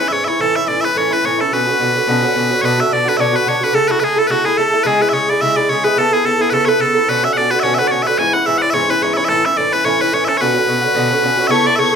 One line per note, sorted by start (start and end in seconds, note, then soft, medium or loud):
0.00 0.11 E3 soft
0.00 0.12 C#4 soft
0.00 0.12 E4 medium
0.08 0.27 G#2 medium
0.08 0.27 E3 medium
0.08 0.13 E5 medium
0.13 0.27 C#4 medium
0.13 0.25 E4 medium
0.13 0.24 C#5 medium
0.24 0.40 E4 soft
0.24 0.41 C#5 medium
0.24 0.28 E5 medium
0.28 0.39 E3 soft
0.28 0.40 C#4 soft
0.39 0.55 A2 medium
0.39 0.55 E3 medium
0.39 0.56 C#4 medium
0.39 0.54 E4 medium
0.39 0.56 A4 loud
0.56 0.67 E3 soft
0.56 0.68 C#4 soft
0.56 0.68 E4 soft
0.56 0.65 E5 medium
0.65 0.83 A2 soft
0.65 0.84 E3 medium
0.65 0.81 D5 medium
0.65 0.68 E5 medium
0.70 0.83 C#4 soft
0.70 0.81 E4 medium
0.81 0.96 C#4 soft
0.81 0.96 E4 soft
0.81 0.98 B4 medium
0.81 0.85 E5 medium
0.86 0.95 E3 soft
0.95 1.11 A2 medium
0.95 1.11 E3 medium
0.95 1.11 C#4 medium
0.95 1.09 E4 medium
0.95 1.13 C#5 medium
1.11 1.24 E3 soft
1.11 1.25 C#4 soft
1.11 1.24 E4 medium
1.11 1.25 B4 medium
1.23 1.39 A2 medium
1.23 1.40 E3 medium
1.23 1.40 C#4 medium
1.23 1.37 E4 medium
1.23 1.41 C#5 medium
1.38 1.52 E3 soft
1.38 1.52 C#4 soft
1.38 1.52 E4 soft
1.38 1.53 A4 medium
1.51 1.67 B2 medium
1.51 1.67 D3 medium
1.51 1.67 C#4 medium
1.51 1.66 F#4 medium
1.51 2.62 B4 medium
1.67 1.79 D3 soft
1.67 1.80 C#4 soft
1.67 1.80 F#4 soft
1.79 1.95 B2 medium
1.79 1.95 D3 medium
1.79 1.95 C#4 medium
1.79 1.93 F#4 medium
1.95 2.06 D3 soft
1.95 2.07 C#4 soft
1.95 2.08 F#4 soft
2.07 2.23 B2 medium
2.07 2.23 D3 medium
2.07 2.23 C#4 medium
2.07 2.21 F#4 medium
2.22 2.35 D3 soft
2.22 2.36 C#4 medium
2.22 2.35 F#4 medium
2.35 2.50 B2 medium
2.35 2.51 D3 medium
2.35 2.51 C#4 medium
2.35 2.49 F#4 medium
2.50 2.62 D3 soft
2.50 2.64 C#4 soft
2.50 2.63 F#4 medium
2.62 2.78 B2 medium
2.62 2.79 D3 medium
2.62 2.79 D4 medium
2.62 2.77 F#4 medium
2.62 2.80 B4 medium
2.62 2.65 C#5 medium
2.78 2.91 D3 soft
2.78 2.92 D4 soft
2.78 2.91 F#4 soft
2.78 2.93 E5 medium
2.91 3.06 B2 medium
2.91 3.07 D3 soft
2.91 3.06 D4 medium
2.91 3.04 F#4 medium
2.91 3.09 D5 medium
3.05 3.18 D3 soft
3.05 3.18 D4 soft
3.05 3.19 F#4 soft
3.05 3.17 B4 medium
3.17 3.34 B2 medium
3.17 3.34 D3 medium
3.17 3.34 D4 medium
3.17 3.32 F#4 medium
3.17 3.36 C#5 medium
3.17 3.20 E5 medium
3.33 3.46 D3 soft
3.33 3.47 D4 soft
3.33 3.46 F#4 medium
3.33 3.49 B4 medium
3.46 3.62 B2 soft
3.46 3.62 D3 medium
3.46 3.60 D4 medium
3.46 3.60 F#4 medium
3.46 3.64 C#5 medium
3.61 3.74 D3 soft
3.61 3.75 D4 soft
3.61 3.74 F#4 medium
3.61 3.75 B4 medium
3.73 3.89 C#3 medium
3.73 3.90 A3 medium
3.73 3.89 E4 medium
3.73 3.88 A4 medium
3.73 3.86 A4 medium
3.88 4.01 A3 soft
3.88 4.01 E4 soft
3.88 4.00 F#4 medium
3.88 4.02 A4 soft
3.88 3.91 B4 medium
4.00 4.17 C#3 medium
4.00 4.18 A3 medium
4.00 4.17 E4 medium
4.00 4.04 B4 medium
4.04 4.19 G#4 medium
4.04 4.15 A4 medium
4.16 4.29 A3 soft
4.16 4.30 E4 soft
4.16 4.30 A4 soft
4.16 4.27 A4 medium
4.27 4.45 C#3 medium
4.27 4.46 A3 medium
4.27 4.45 E4 medium
4.27 4.45 F#4 medium
4.27 4.31 B4 medium
4.32 4.43 A4 medium
4.44 4.56 A3 soft
4.44 4.57 E4 soft
4.44 4.58 G#4 medium
4.44 4.58 A4 medium
4.56 4.73 C#3 medium
4.56 4.73 A3 medium
4.56 4.72 E4 medium
4.56 4.83 A4 medium
4.56 4.70 A4 medium
4.71 4.86 A3 soft
4.71 4.85 E4 medium
4.71 4.85 A4 medium
4.83 5.01 C#3 medium
4.83 5.01 G#3 medium
4.83 5.01 E4 medium
4.83 5.02 G#4 medium
4.83 4.87 B4 medium
4.87 4.99 G#4 medium
5.00 5.12 G#3 soft
5.00 5.14 E4 soft
5.00 5.13 G#4 medium
5.00 5.09 B4 medium
5.09 5.28 C#3 medium
5.09 5.13 E5 medium
5.13 5.29 G#3 medium
5.13 5.28 E4 medium
5.13 5.27 G#4 medium
5.13 5.30 C#5 medium
5.28 5.41 G#3 soft
5.28 5.42 E4 soft
5.28 5.41 G#4 soft
5.28 5.41 D5 medium
5.41 5.57 C#3 medium
5.41 5.57 G#3 medium
5.41 5.56 E4 medium
5.41 5.55 G#4 medium
5.41 5.56 E5 loud
5.56 5.69 G#3 soft
5.56 5.70 E4 medium
5.56 5.69 G#4 soft
5.56 5.69 D5 medium
5.69 5.84 C#3 medium
5.69 5.85 G#3 medium
5.69 5.85 E4 medium
5.69 5.83 G#4 medium
5.69 5.84 C#5 medium
5.84 5.97 G#3 soft
5.84 5.97 E4 soft
5.84 5.97 G#4 medium
5.84 5.98 B4 medium
5.96 6.12 C#3 medium
5.96 6.12 B3 medium
5.96 6.12 E4 medium
5.96 6.13 A4 loud
5.96 6.10 A4 medium
6.11 6.24 B3 soft
6.11 6.25 E4 soft
6.11 6.26 G#4 medium
6.11 6.24 A4 soft
6.23 6.39 C#3 soft
6.23 6.40 B3 soft
6.23 6.39 E4 medium
6.23 6.42 A4 medium
6.23 6.37 A4 medium
6.38 6.52 B3 soft
6.38 6.53 E4 soft
6.38 6.50 G#4 medium
6.38 6.52 A4 soft
6.50 6.67 C#3 medium
6.50 6.68 B3 medium
6.50 6.67 E4 medium
6.50 6.65 A4 loud
6.50 6.53 B4 medium
6.54 6.66 A4 medium
6.65 6.80 E4 soft
6.65 6.80 A4 medium
6.65 6.81 B4 medium
6.65 6.69 C#5 medium
6.70 6.79 B3 soft
6.79 6.95 C#3 medium
6.79 6.96 B3 medium
6.79 6.95 E4 medium
6.79 7.09 A4 medium
6.79 6.93 A4 medium
6.94 7.08 B3 soft
6.94 7.08 E4 soft
6.94 7.08 A4 medium
7.07 7.23 B2 medium
7.07 7.23 D3 medium
7.07 7.23 C#4 medium
7.07 7.21 F#4 medium
7.07 7.24 B4 medium
7.23 7.36 D3 soft
7.23 7.36 C#4 soft
7.23 7.35 F#4 soft
7.23 7.33 E5 medium
7.33 7.51 B2 soft
7.33 7.37 F#5 loud
7.37 7.51 D3 medium
7.37 7.51 C#4 medium
7.37 7.49 F#4 soft
7.37 7.51 D5 loud
7.50 7.62 D3 soft
7.50 7.64 C#4 soft
7.50 7.63 F#4 soft
7.50 7.60 B4 medium
7.60 7.78 B2 medium
7.60 7.79 D3 medium
7.60 7.74 C#5 medium
7.60 7.63 E5 medium
7.65 7.78 C#4 medium
7.65 7.76 F#4 medium
7.74 7.91 F#4 medium
7.74 7.79 E5 medium
7.79 7.90 D3 soft
7.79 7.91 C#4 soft
7.79 7.88 B4 medium
7.88 8.06 B2 soft
7.88 8.06 D3 medium
7.88 8.03 C#5 medium
7.88 7.91 D5 medium
7.93 8.05 C#4 medium
7.93 8.03 F#4 medium
8.03 8.19 C#4 soft
8.03 8.18 F#4 soft
8.03 8.07 E5 medium
8.07 8.19 D3 soft
8.07 8.18 B4 medium
8.18 8.34 G#2 medium
8.18 8.34 E3 medium
8.18 8.34 C#4 medium
8.18 8.32 E4 medium
8.18 8.34 G#5 loud
8.33 8.46 E3 soft
8.33 8.47 C#4 soft
8.33 8.46 E4 medium
8.33 8.46 F#5 medium
8.45 8.61 G#2 medium
8.45 8.62 E3 medium
8.45 8.61 C#4 medium
8.45 8.59 E4 medium
8.45 8.58 E5 medium
8.58 8.74 E4 soft
8.58 8.62 F#5 medium
8.62 8.73 E3 soft
8.62 8.74 C#4 soft
8.62 8.70 D5 medium
8.70 8.89 G#2 medium
8.70 8.89 E3 medium
8.70 8.90 C#5 medium
8.70 8.74 E5 medium
8.75 8.89 C#4 medium
8.75 8.87 E4 medium
8.88 9.01 E3 soft
8.88 9.02 C#4 soft
8.88 9.01 E4 medium
8.88 9.03 B4 medium
9.01 9.16 G#2 medium
9.01 9.17 E3 medium
9.01 9.16 C#4 medium
9.01 9.15 E4 medium
9.01 9.14 C#5 medium
9.14 9.29 E4 medium
9.14 9.25 C#5 medium
9.14 9.17 E5 medium
9.18 9.29 E3 soft
9.18 9.29 C#4 soft
9.25 9.44 A2 medium
9.25 9.29 E5 loud
9.29 9.45 E3 medium
9.29 9.45 C#4 medium
9.29 9.43 E4 medium
9.29 9.46 A4 loud
9.44 9.57 E3 soft
9.44 9.58 C#4 soft
9.44 9.57 E4 soft
9.44 9.57 E5 medium
9.57 9.72 A2 medium
9.57 9.73 E3 medium
9.57 9.73 C#4 medium
9.57 9.71 E4 medium
9.57 9.73 D5 medium
9.72 9.84 E3 soft
9.72 9.84 C#4 soft
9.72 9.85 E4 soft
9.72 9.85 B4 medium
9.84 10.00 A2 medium
9.84 10.00 E3 medium
9.84 10.00 C#4 medium
9.84 9.98 E4 medium
9.84 10.01 C#5 medium
9.99 10.12 E3 soft
9.99 10.13 C#4 medium
9.99 10.12 E4 soft
9.99 10.14 B4 medium
10.12 10.27 A2 medium
10.12 10.28 E3 medium
10.12 10.27 C#4 medium
10.12 10.25 E4 medium
10.12 10.25 C#5 medium
10.25 10.40 C#4 soft
10.25 10.40 E4 medium
10.25 10.37 A4 medium
10.25 10.28 E5 medium
10.30 10.40 E3 soft
10.37 10.55 B2 medium
10.37 10.56 D3 medium
10.37 10.55 C#4 medium
10.37 11.47 B4 medium
10.37 10.41 C#5 medium
10.42 10.53 F#4 medium
10.54 10.66 D3 soft
10.54 10.67 C#4 soft
10.54 10.67 F#4 soft
10.66 10.82 B2 medium
10.66 10.83 D3 medium
10.66 10.82 C#4 medium
10.66 10.80 F#4 medium
10.81 10.94 D3 soft
10.81 10.95 C#4 soft
10.81 10.95 F#4 soft
10.94 11.10 B2 medium
10.94 11.11 D3 medium
10.94 11.11 C#4 medium
10.94 11.09 F#4 medium
11.10 11.22 D3 medium
11.10 11.23 C#4 medium
11.10 11.23 F#4 medium
11.22 11.38 B2 medium
11.22 11.38 D3 medium
11.22 11.38 C#4 medium
11.22 11.36 F#4 medium
11.37 11.50 D3 medium
11.37 11.50 C#4 medium
11.37 11.50 F#4 medium
11.47 11.65 C#3 medium
11.47 11.66 B3 medium
11.47 11.65 E4 medium
11.47 11.66 C#5 medium
11.47 11.51 E5 medium
11.47 11.77 C#6 medium
11.51 11.63 A4 medium
11.64 11.77 B3 soft
11.64 11.78 E4 soft
11.64 11.78 A4 soft
11.64 11.76 D5 loud
11.76 11.93 C#3 medium
11.76 11.94 B3 medium
11.76 11.93 E4 medium
11.76 11.95 C#5 medium
11.76 11.79 E5 medium
11.76 11.96 C#6 medium
11.80 11.91 A4 medium
11.93 11.96 A4 soft